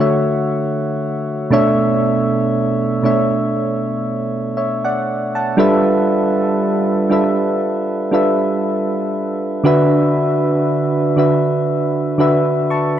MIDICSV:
0, 0, Header, 1, 2, 480
1, 0, Start_track
1, 0, Key_signature, 2, "major"
1, 0, Tempo, 1016949
1, 715, Time_signature, 4, 2, 24, 8
1, 6134, End_track
2, 0, Start_track
2, 0, Title_t, "Synth keys"
2, 0, Program_c, 0, 88
2, 0, Control_c, 0, 64, 127
2, 0, Note_on_c, 0, 50, 83
2, 0, Note_on_c, 0, 57, 72
2, 0, Note_on_c, 0, 66, 73
2, 0, Note_on_c, 0, 73, 76
2, 0, Note_on_c, 0, 78, 93
2, 2, Note_off_c, 0, 73, 0
2, 2, Note_on_c, 0, 73, 73
2, 5, Note_on_c, 0, 76, 86
2, 460, Note_off_c, 0, 50, 0
2, 462, Note_off_c, 0, 57, 0
2, 464, Note_off_c, 0, 66, 0
2, 466, Note_off_c, 0, 73, 0
2, 467, Note_off_c, 0, 76, 0
2, 710, Note_on_c, 0, 47, 116
2, 714, Note_on_c, 0, 57, 105
2, 718, Note_on_c, 0, 62, 103
2, 721, Note_on_c, 0, 73, 103
2, 722, Control_c, 0, 64, 0
2, 724, Note_off_c, 0, 78, 0
2, 725, Note_on_c, 0, 76, 127
2, 800, Control_c, 0, 64, 127
2, 1180, Note_off_c, 0, 47, 0
2, 1182, Note_off_c, 0, 57, 0
2, 1184, Note_off_c, 0, 62, 0
2, 1185, Note_off_c, 0, 73, 0
2, 1187, Note_off_c, 0, 76, 0
2, 1430, Note_on_c, 0, 47, 86
2, 1433, Note_on_c, 0, 57, 77
2, 1437, Note_on_c, 0, 62, 73
2, 1441, Note_on_c, 0, 73, 79
2, 1444, Note_on_c, 0, 76, 96
2, 1749, Note_off_c, 0, 47, 0
2, 1751, Note_off_c, 0, 57, 0
2, 1753, Note_off_c, 0, 62, 0
2, 1754, Note_off_c, 0, 73, 0
2, 1756, Note_off_c, 0, 76, 0
2, 2157, Note_on_c, 0, 76, 72
2, 2160, Note_on_c, 0, 73, 64
2, 2279, Note_off_c, 0, 76, 0
2, 2281, Note_off_c, 0, 73, 0
2, 2287, Note_on_c, 0, 78, 73
2, 2290, Note_on_c, 0, 74, 66
2, 2514, Note_off_c, 0, 78, 0
2, 2516, Note_off_c, 0, 74, 0
2, 2526, Note_on_c, 0, 81, 73
2, 2529, Note_on_c, 0, 78, 61
2, 2629, Note_on_c, 0, 55, 118
2, 2632, Note_on_c, 0, 62, 107
2, 2635, Note_on_c, 0, 65, 107
2, 2638, Note_on_c, 0, 69, 108
2, 2641, Note_on_c, 0, 71, 106
2, 2642, Control_c, 0, 64, 0
2, 2643, Note_on_c, 0, 76, 125
2, 2726, Control_c, 0, 64, 127
2, 2753, Note_off_c, 0, 81, 0
2, 2755, Note_off_c, 0, 78, 0
2, 3099, Note_off_c, 0, 55, 0
2, 3101, Note_off_c, 0, 62, 0
2, 3102, Note_off_c, 0, 65, 0
2, 3104, Note_off_c, 0, 69, 0
2, 3105, Note_off_c, 0, 71, 0
2, 3106, Note_off_c, 0, 76, 0
2, 3349, Note_on_c, 0, 55, 82
2, 3353, Note_on_c, 0, 62, 78
2, 3355, Note_on_c, 0, 65, 73
2, 3358, Note_on_c, 0, 69, 76
2, 3361, Note_on_c, 0, 71, 78
2, 3364, Note_on_c, 0, 76, 95
2, 3669, Note_off_c, 0, 55, 0
2, 3670, Note_off_c, 0, 62, 0
2, 3672, Note_off_c, 0, 65, 0
2, 3673, Note_off_c, 0, 69, 0
2, 3674, Note_off_c, 0, 71, 0
2, 3676, Note_off_c, 0, 76, 0
2, 3830, Note_on_c, 0, 55, 81
2, 3833, Note_on_c, 0, 62, 74
2, 3836, Note_on_c, 0, 65, 74
2, 3838, Note_on_c, 0, 69, 72
2, 3841, Note_on_c, 0, 71, 74
2, 3844, Note_on_c, 0, 76, 93
2, 4300, Note_off_c, 0, 55, 0
2, 4301, Note_off_c, 0, 62, 0
2, 4303, Note_off_c, 0, 65, 0
2, 4304, Note_off_c, 0, 69, 0
2, 4305, Note_off_c, 0, 71, 0
2, 4307, Note_off_c, 0, 76, 0
2, 4548, Note_on_c, 0, 50, 113
2, 4552, Note_on_c, 0, 62, 108
2, 4555, Note_on_c, 0, 66, 108
2, 4559, Note_on_c, 0, 71, 108
2, 4561, Control_c, 0, 64, 0
2, 4563, Note_on_c, 0, 76, 118
2, 4648, Control_c, 0, 64, 127
2, 5019, Note_off_c, 0, 50, 0
2, 5021, Note_off_c, 0, 62, 0
2, 5022, Note_off_c, 0, 66, 0
2, 5024, Note_off_c, 0, 71, 0
2, 5026, Note_off_c, 0, 76, 0
2, 5269, Note_on_c, 0, 50, 84
2, 5272, Note_on_c, 0, 62, 75
2, 5276, Note_on_c, 0, 66, 78
2, 5280, Note_on_c, 0, 71, 80
2, 5283, Note_on_c, 0, 76, 92
2, 5588, Note_off_c, 0, 50, 0
2, 5590, Note_off_c, 0, 62, 0
2, 5592, Note_off_c, 0, 66, 0
2, 5594, Note_off_c, 0, 71, 0
2, 5596, Note_off_c, 0, 76, 0
2, 5749, Note_on_c, 0, 50, 89
2, 5753, Note_on_c, 0, 62, 82
2, 5756, Note_on_c, 0, 66, 81
2, 5760, Note_on_c, 0, 71, 84
2, 5763, Note_on_c, 0, 76, 99
2, 5996, Note_on_c, 0, 85, 69
2, 5999, Note_off_c, 0, 76, 0
2, 5999, Note_on_c, 0, 81, 60
2, 6119, Note_off_c, 0, 85, 0
2, 6121, Note_off_c, 0, 81, 0
2, 6134, Note_off_c, 0, 50, 0
2, 6134, Note_off_c, 0, 62, 0
2, 6134, Note_off_c, 0, 66, 0
2, 6134, Note_off_c, 0, 71, 0
2, 6134, End_track
0, 0, End_of_file